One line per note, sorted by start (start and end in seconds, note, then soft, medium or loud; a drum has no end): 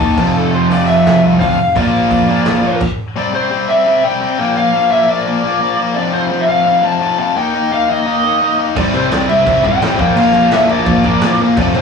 0.00 0.19 D#2 medium
0.00 0.16 D#3 medium
0.00 0.17 D#3 medium
0.00 0.17 G3 medium
0.00 0.17 A#3 medium
0.00 0.17 D#4 medium
0.00 0.16 G4 loud
0.00 0.38 A5 loud
0.00 kick medium
0.00 open hi-hat medium
0.17 0.33 F1 loud
0.17 0.68 F2 medium
0.17 0.70 C3 loud
0.17 0.72 F3 loud
0.17 0.70 A3 loud
0.17 0.70 C4 loud
0.17 0.72 F4 loud
0.17 kick loud
0.17 crash loud
0.35 0.65 F1 medium
0.35 0.55 A4 loud
0.55 0.72 C5 medium
0.70 1.00 F1 loud
0.70 1.57 F2 medium
0.70 1.57 C3 medium
0.70 1.58 F3 medium
0.70 1.23 A3 medium
0.70 1.22 C4 medium
0.70 1.22 F4 medium
0.70 0.87 D5 medium
0.70 open hi-hat medium
0.87 1.20 E5 loud
1.06 1.21 F1 medium
1.06 snare loud
1.06 open hi-hat medium
1.23 1.38 C2 medium
1.23 1.58 F2 medium
1.23 1.58 C3 medium
1.23 1.58 F3 medium
1.23 1.58 A3 medium
1.23 1.57 C4 medium
1.23 1.57 F4 loud
1.40 1.56 D2 medium
1.40 1.57 F2 medium
1.40 1.58 C3 medium
1.40 1.58 F3 medium
1.40 1.73 F5 loud
1.40 kick medium
1.40 open hi-hat medium
1.59 1.73 F1 medium
1.76 2.06 A#1 loud
1.76 2.27 A#2 medium
1.76 2.28 F3 medium
1.76 2.27 A#3 medium
1.76 2.27 D4 loud
1.76 2.26 F4 loud
1.76 2.78 D5 medium
1.76 kick loud
1.76 open hi-hat medium
2.11 2.26 A#1 medium
2.11 kick medium
2.11 open hi-hat medium
2.27 2.43 A#2 medium
2.27 2.81 A#2 medium
2.27 2.80 F3 medium
2.27 2.80 A#3 medium
2.27 2.80 D4 medium
2.27 2.80 F4 medium
2.45 2.61 A#1 loud
2.45 snare loud
2.45 open hi-hat medium
2.64 2.79 A#1 medium
2.81 kick loud
2.81 crash loud
3.16 3.32 C3 loud
3.16 3.33 G3 medium
3.16 3.33 C4 loud
3.16 3.33 D5 loud
3.33 3.49 C3 medium
3.33 3.50 G3 medium
3.33 3.51 C4 medium
3.33 3.67 C5 loud
3.50 3.67 C3 loud
3.50 3.68 G3 loud
3.50 3.68 C4 loud
3.68 3.85 C3 medium
3.68 3.86 G3 medium
3.68 3.86 C4 medium
3.68 4.05 E5 loud
3.86 4.03 C3 loud
3.86 4.03 G3 loud
3.86 4.04 C4 loud
4.04 4.20 C3 medium
4.04 4.21 G3 medium
4.04 4.21 C4 loud
4.04 4.38 G5 loud
4.21 4.38 C3 loud
4.21 4.38 G3 medium
4.21 4.38 C4 loud
4.39 4.55 A#2 medium
4.39 4.56 F3 loud
4.39 4.55 A#3 loud
4.39 4.55 G5 loud
4.56 4.72 A#2 loud
4.56 4.73 F3 loud
4.56 4.73 A#3 loud
4.56 4.90 F5 loud
4.73 4.89 A#2 medium
4.73 4.91 F3 medium
4.73 4.90 A#3 medium
4.90 5.06 A#2 loud
4.90 5.08 F3 loud
4.90 5.07 A#3 loud
4.90 5.10 E5 loud
5.07 5.25 A#2 medium
5.07 5.25 F3 medium
5.07 5.25 A#3 medium
5.07 5.79 D5 loud
5.26 5.42 A#2 loud
5.26 5.42 F3 loud
5.26 5.43 A#3 loud
5.43 5.59 A#2 medium
5.43 5.60 F3 medium
5.43 5.60 A#3 loud
5.61 5.77 A#2 loud
5.61 5.77 F3 loud
5.61 5.78 A#3 loud
5.78 5.95 A#2 medium
5.78 5.95 F3 medium
5.78 5.95 A#3 loud
5.95 6.12 F2 medium
5.95 6.13 C3 loud
5.95 6.13 F3 loud
5.95 6.14 D5 medium
6.13 6.29 F2 medium
6.13 6.30 C3 medium
6.13 6.30 F3 medium
6.13 6.42 C5 loud
6.30 6.47 F2 loud
6.30 6.47 C3 loud
6.30 6.48 F3 loud
6.40 6.48 E5 medium
6.48 6.64 F2 medium
6.48 6.65 C3 medium
6.48 6.66 F3 medium
6.48 6.85 F5 loud
6.66 6.81 F2 loud
6.66 6.82 C3 medium
6.66 6.83 F3 loud
6.83 6.99 F2 medium
6.83 7.00 C3 medium
6.83 7.00 F3 medium
6.83 7.18 A5 loud
7.01 7.18 F2 loud
7.01 7.18 C3 loud
7.01 7.19 F3 loud
7.19 7.35 F2 medium
7.19 7.36 C3 medium
7.19 7.36 F3 loud
7.19 7.35 A5 loud
7.36 7.53 D#3 medium
7.36 7.53 A#3 loud
7.36 7.53 D#4 loud
7.36 7.73 G5 loud
7.54 7.70 D#3 medium
7.54 7.71 A#3 medium
7.54 7.71 D#4 medium
7.71 7.88 D#3 loud
7.71 7.88 A#3 loud
7.71 7.89 D#4 loud
7.71 7.89 F5 loud
7.89 8.05 D#3 medium
7.89 8.05 A#3 loud
7.89 8.06 D#4 medium
7.89 8.59 D#5 loud
8.06 8.23 D#3 loud
8.06 8.24 A#3 loud
8.06 8.24 D#4 loud
8.24 8.40 D#3 medium
8.24 8.40 A#3 loud
8.24 8.41 D#4 loud
8.41 8.57 D#3 loud
8.41 8.58 A#3 loud
8.41 8.58 D#4 loud
8.58 8.75 D#3 medium
8.58 8.76 A#3 medium
8.58 8.76 D#4 loud
8.76 8.93 C2 medium
8.76 8.93 C3 medium
8.76 8.93 G3 loud
8.76 8.94 C4 loud
8.76 9.27 E4 loud
8.76 8.95 D5 medium
8.76 kick loud
8.76 crash loud
8.94 9.11 C2 medium
8.94 9.09 C3 medium
8.94 9.10 G3 medium
8.94 9.10 C4 medium
8.94 9.11 C5 medium
8.94 crash medium
9.10 9.28 C2 loud
9.10 9.27 C3 loud
9.10 9.27 G3 loud
9.10 9.27 C4 loud
9.10 9.29 D5 medium
9.10 snare loud
9.10 crash medium
9.28 9.46 C2 medium
9.28 9.44 C3 medium
9.28 9.44 G3 medium
9.28 9.45 C4 loud
9.28 9.80 E4 medium
9.28 9.65 E5 medium
9.28 crash medium
9.45 9.63 C2 loud
9.45 9.62 C3 loud
9.45 9.62 G3 loud
9.45 9.63 C4 loud
9.45 kick loud
9.45 crash medium
9.63 9.80 C2 medium
9.63 9.80 C3 medium
9.63 9.80 G3 medium
9.63 9.81 C4 loud
9.63 9.99 G5 loud
9.63 kick medium
9.63 crash medium
9.81 9.99 A1 medium
9.81 9.98 C3 loud
9.81 9.98 G3 loud
9.81 9.98 C4 loud
9.81 9.99 E4 medium
9.81 snare loud
9.81 crash medium
9.99 10.15 A#1 loud
9.99 10.15 A#2 medium
9.99 10.17 F3 loud
9.99 10.16 A#3 loud
9.99 10.51 D4 loud
9.99 10.17 G5 loud
9.99 kick loud
9.99 crash medium
10.16 10.33 A#1 loud
10.16 10.33 A#2 loud
10.16 10.34 F3 loud
10.16 10.34 A#3 loud
10.16 10.53 F5 medium
10.16 crash medium
10.33 10.50 A#1 loud
10.33 10.51 A#2 medium
10.33 10.52 F3 medium
10.33 10.52 A#3 medium
10.33 crash medium
10.51 10.68 A#1 medium
10.51 10.68 A#2 loud
10.51 10.69 F3 loud
10.51 10.69 A#3 loud
10.51 11.03 D4 loud
10.51 10.70 E5 medium
10.51 snare loud
10.51 crash medium
10.69 10.86 A#1 loud
10.69 10.86 A#2 medium
10.69 10.87 F3 medium
10.69 10.87 A#3 medium
10.69 11.40 D5 loud
10.69 crash medium
10.86 11.04 A#1 loud
10.86 11.04 A#2 loud
10.86 11.04 F3 loud
10.86 11.05 A#3 loud
10.86 kick loud
10.86 crash medium
11.04 11.21 A#1 medium
11.04 11.21 A#2 medium
11.04 11.22 F3 medium
11.04 11.22 A#3 loud
11.04 11.38 D4 loud
11.04 kick medium
11.04 crash medium
11.21 11.39 A#1 loud
11.21 11.39 A#2 loud
11.21 11.39 F3 loud
11.21 11.39 A#3 loud
11.21 snare loud
11.21 crash loud
11.39 11.56 A#1 loud
11.39 11.56 A#2 medium
11.39 11.57 F3 medium
11.39 11.56 A#3 loud
11.39 crash medium
11.57 11.74 F1 loud
11.57 11.74 F2 medium
11.57 11.74 C3 medium
11.57 11.75 F3 loud
11.57 11.81 A3 loud
11.57 11.81 C4 loud
11.57 11.63 D5 loud
11.57 kick loud
11.57 crash loud
11.74 11.81 F1 loud
11.74 11.81 F2 medium
11.74 11.81 C3 medium
11.74 11.81 F3 medium
11.74 11.81 C5 loud
11.74 crash medium